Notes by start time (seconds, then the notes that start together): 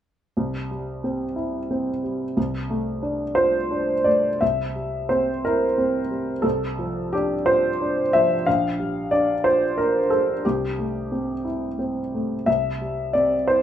0.37 C2
0.71 G3
1.04 C4
1.36 E4
1.71 C4
2.04 G3
2.37 C2
2.70 A3
3.03 D4
3.35 F4 C5
3.71 D4
4.04 A3 D5
4.41 C2 E5
4.75 G3
5.09 C4 C5
5.45 E4 A#4
5.78 C4
6.11 G3
6.42 C2 A4
6.79 F3
7.13 D4 G4
7.46 F4 C5
7.81 D4
8.13 F3 E5
8.46 A#1 F5
8.79 G3
9.11 D4 D5
9.44 F4 C5
9.78 D4 A#4
10.10 G3 A4
10.45 C2 G4
10.79 A3
11.12 C4
11.45 E4
11.79 C4
12.14 A3
12.46 C2 E5
12.81 G3
13.13 C4 D5
13.48 E4 C5